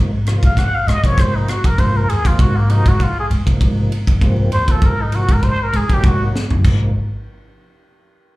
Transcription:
0.00 0.33 G#2 medium
0.00 0.11 C3 medium
0.00 0.11 F3 medium
0.00 0.11 A#3 medium
0.00 0.12 D#4 loud
0.27 0.47 C3 medium
0.27 0.47 F3 medium
0.27 0.47 A#3 medium
0.27 0.48 F4 medium
0.27 cross-stick medium
0.27 ride medium
0.43 0.67 G#2 loud
0.43 0.60 F5 medium
0.43 kick medium
0.43 ride medium
0.57 0.65 A#3 soft
0.57 0.65 F#4 soft
0.57 0.76 F#5 loud
0.57 kick medium
0.57 cross-stick medium
0.57 ride medium
0.75 0.89 F5 medium
0.87 1.00 G#2 medium
0.87 1.07 D#5 medium
0.87 cross-stick medium
0.87 ride medium
1.03 1.52 C3 medium
1.03 1.52 F3 medium
1.03 1.52 A#3 medium
1.03 1.53 C4 medium
1.03 1.22 C#5 medium
1.03 muted upright bass stroke soft
1.03 kick medium
1.03 ride medium
1.18 1.42 G#2 medium
1.18 1.37 C5 medium
1.18 kick loud
1.18 cross-stick medium
1.18 ride medium
1.36 1.51 D#4 medium
1.48 1.68 F#4 medium
1.48 cross-stick medium
1.48 ride medium
1.64 1.76 F#2 medium
1.64 1.81 A#4 medium
1.64 kick medium
1.64 ride medium
1.78 2.09 G#2 medium
1.78 2.07 C3 medium
1.78 2.07 F3 medium
1.78 2.08 A#3 medium
1.78 2.08 F4 loud
1.78 1.98 C5 medium
1.78 kick medium
1.78 ride medium
1.97 2.11 A#4 medium
2.09 2.33 D#2 loud
2.09 2.28 G#4 medium
2.09 ride medium
2.25 2.54 C3 medium
2.25 2.54 F3 medium
2.25 2.55 A#3 medium
2.25 2.55 D#4 medium
2.25 2.42 F4 medium
2.25 kick medium
2.25 ride medium
2.39 2.76 G#2 medium
2.39 2.58 F#4 medium
2.39 kick loud
2.39 ride medium
2.57 2.72 A#3 medium
2.69 2.90 C3 medium
2.69 2.90 F3 medium
2.69 2.90 A#3 medium
2.69 2.90 D#4 medium
2.69 2.90 F#4 medium
2.69 ride medium
2.86 3.10 G#2 loud
2.86 3.04 F#4 medium
2.86 kick medium
2.86 ride medium
2.99 3.07 A#3 soft
2.99 3.08 F4 soft
2.99 3.18 F4 medium
2.99 kick medium
2.99 ride medium
3.19 3.27 G#4 medium
3.30 3.43 G#2 loud
3.30 ride medium
3.45 3.94 C3 medium
3.45 3.94 F3 medium
3.45 3.94 A#3 medium
3.45 3.95 D#4 medium
3.45 muted upright bass stroke soft
3.45 kick medium
3.45 ride medium
3.61 3.85 G#2 medium
3.61 kick loud
3.61 ride medium
3.92 ride medium
4.07 4.19 F#2 medium
4.07 kick medium
4.07 ride medium
4.21 4.52 G#2 medium
4.21 4.50 C3 loud
4.21 4.51 F3 loud
4.21 4.51 A#3 loud
4.21 4.51 C4 loud
4.21 kick medium
4.21 ride medium
4.52 4.76 D#2 medium
4.52 4.73 C5 loud
4.52 ride medium
4.67 4.97 C3 medium
4.67 4.97 F3 medium
4.67 4.97 A#3 medium
4.67 4.97 F4 medium
4.67 kick medium
4.67 ride medium
4.71 4.87 A4 medium
4.82 5.19 G#2 medium
4.82 kick loud
4.82 ride medium
4.86 5.03 A#4 medium
5.02 5.17 D#4 medium
5.11 5.32 C3 medium
5.11 5.32 F3 medium
5.11 5.33 A#3 medium
5.11 5.33 F4 medium
5.11 5.33 F#4 medium
5.11 ride medium
5.29 5.53 G#2 loud
5.29 5.46 A#4 medium
5.29 kick medium
5.29 ride medium
5.42 5.50 A#3 soft
5.42 5.51 D#4 soft
5.42 5.64 C5 medium
5.42 kick medium
5.42 ride medium
5.63 5.78 A#4 medium
5.73 5.86 G#2 loud
5.73 5.95 G#4 medium
5.73 ride medium
5.88 6.37 C3 medium
5.88 6.37 F#3 medium
5.88 6.37 A#3 medium
5.88 6.38 D#4 medium
5.88 muted upright bass stroke soft
5.88 kick medium
5.88 ride medium
5.94 6.05 G4 medium
6.04 6.28 G#2 loud
6.04 6.24 F#4 medium
6.04 kick loud
6.04 ride medium
6.36 snare medium
6.50 6.61 F#2 medium
6.50 floor tom medium
6.64 6.93 G#1 medium
6.64 6.92 C3 medium
6.64 6.92 F3 medium
6.64 6.92 A#3 medium
6.64 6.92 D#4 medium
6.64 kick loud
6.64 crash medium

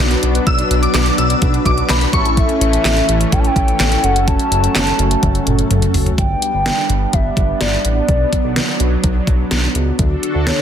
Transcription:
0.00 0.16 B1 loud
0.00 2.10 F#3 medium
0.00 2.10 B3 medium
0.00 2.09 D4 medium
0.00 2.10 D4 medium
0.00 2.09 F#4 medium
0.00 2.09 B4 medium
0.11 closed hi-hat medium
0.23 0.40 B1 loud
0.23 closed hi-hat medium
0.35 closed hi-hat medium
0.47 0.63 B1 loud
0.47 0.55 E6 loud
0.47 kick loud
0.47 closed hi-hat medium
0.59 closed hi-hat medium
0.70 0.87 B1 medium
0.70 closed hi-hat medium
0.82 0.91 D6 medium
0.82 closed hi-hat medium
0.94 1.11 B1 loud
0.94 1.11 D6 medium
0.94 snare loud
0.94 clap loud
0.94 closed hi-hat medium
1.06 closed hi-hat medium
1.18 1.35 B1 loud
1.18 1.26 E6 medium
1.18 closed hi-hat medium
1.30 closed hi-hat medium
1.42 1.59 B1 loud
1.42 kick loud
1.42 closed hi-hat medium
1.54 closed hi-hat soft
1.65 1.82 B1 loud
1.65 1.74 D6 medium
1.65 kick loud
1.65 closed hi-hat medium
1.78 closed hi-hat soft
1.89 2.06 B1 loud
1.89 1.98 B5 medium
1.89 snare loud
1.89 clap loud
1.89 closed hi-hat medium
2.01 closed hi-hat medium
2.13 2.47 A1 loud
2.13 4.02 E3 medium
2.13 4.02 A3 medium
2.13 4.00 C#4 medium
2.13 6.14 C#4 loud
2.13 4.00 E4 medium
2.13 4.00 A4 medium
2.13 2.22 C#6 medium
2.13 kick medium
2.13 closed hi-hat medium
2.25 closed hi-hat medium
2.37 3.34 E5 loud
2.37 kick loud
2.37 closed hi-hat medium
2.49 closed hi-hat medium
2.61 2.78 A1 loud
2.61 closed hi-hat medium
2.73 closed hi-hat medium
2.85 3.01 A1 loud
2.85 snare loud
2.85 clap loud
2.85 closed hi-hat medium
2.97 closed hi-hat medium
3.09 3.25 A1 loud
3.09 closed hi-hat medium
3.21 closed hi-hat medium
3.32 3.49 A1 loud
3.32 3.41 G5 loud
3.32 kick loud
3.32 closed hi-hat medium
3.40 3.48 A5 medium
3.44 4.05 G5 loud
3.44 closed hi-hat soft
3.56 3.73 A1 loud
3.56 kick loud
3.56 closed hi-hat medium
3.68 closed hi-hat medium
3.80 3.97 A1 loud
3.80 snare loud
3.80 clap loud
3.80 closed hi-hat medium
3.92 closed hi-hat medium
4.04 4.37 F#1 loud
4.04 6.16 F#3 medium
4.04 6.16 A3 medium
4.04 6.14 C#4 medium
4.04 6.14 F#4 medium
4.04 6.14 A4 medium
4.04 4.27 F#5 loud
4.04 closed hi-hat medium
4.16 closed hi-hat medium
4.28 5.66 A5 loud
4.28 kick loud
4.28 closed hi-hat medium
4.39 closed hi-hat medium
4.51 4.68 F#1 loud
4.51 closed hi-hat medium
4.64 closed hi-hat medium
4.75 4.92 F#1 loud
4.75 snare loud
4.75 clap loud
4.75 closed hi-hat medium
4.87 closed hi-hat medium
4.99 5.16 F#1 loud
4.99 closed hi-hat medium
5.11 closed hi-hat medium
5.23 5.40 F#1 loud
5.23 kick loud
5.23 closed hi-hat medium
5.23 high tom medium
5.35 closed hi-hat soft
5.47 5.63 F#1 loud
5.47 closed hi-hat medium
5.47 mid tom medium
5.59 closed hi-hat soft
5.71 5.87 F#1 loud
5.71 closed hi-hat medium
5.71 mid tom medium
5.82 closed hi-hat medium
5.82 mid tom medium
5.94 6.11 F#1 loud
5.94 floor tom loud
5.94 open hi-hat medium
6.06 closed hi-hat medium
6.06 floor tom medium
6.18 6.35 G1 loud
6.18 8.07 G3 medium
6.18 9.95 B3 medium
6.18 9.95 D4 medium
6.18 7.15 G5 loud
6.18 kick loud
6.18 closed hi-hat medium
6.42 closed hi-hat medium
6.54 6.70 G1 medium
6.66 snare loud
6.66 closed hi-hat medium
6.90 7.06 G1 loud
6.90 closed hi-hat medium
7.13 7.30 G1 loud
7.13 7.61 E5 loud
7.13 kick medium
7.13 closed hi-hat medium
7.37 7.54 G1 medium
7.37 kick medium
7.37 closed hi-hat medium
7.61 7.78 G1 loud
7.61 7.83 D5 medium
7.61 snare loud
7.61 closed hi-hat medium
7.85 8.01 A1 medium
7.85 8.76 D5 medium
7.85 closed hi-hat medium
8.09 8.25 B1 loud
8.09 9.97 F#3 medium
8.09 kick loud
8.09 closed hi-hat medium
8.33 kick medium
8.33 closed hi-hat medium
8.44 8.61 B1 loud
8.56 snare loud
8.56 closed hi-hat medium
8.80 8.97 B1 loud
8.80 closed hi-hat medium
9.04 9.20 B1 loud
9.04 kick medium
9.04 closed hi-hat medium
9.27 9.44 B1 loud
9.27 kick medium
9.27 closed hi-hat medium
9.51 9.68 B1 loud
9.51 snare loud
9.51 closed hi-hat medium
9.75 9.92 C#2 medium
9.75 closed hi-hat medium
9.99 10.16 D2 loud
9.99 10.62 D3 medium
9.99 10.62 D4 medium
9.99 10.62 F#4 medium
9.99 10.62 A4 medium
9.99 kick loud
9.99 closed hi-hat medium
10.23 closed hi-hat medium
10.35 10.51 D2 medium
10.47 10.62 C#5 medium
10.47 snare loud
10.47 closed hi-hat medium

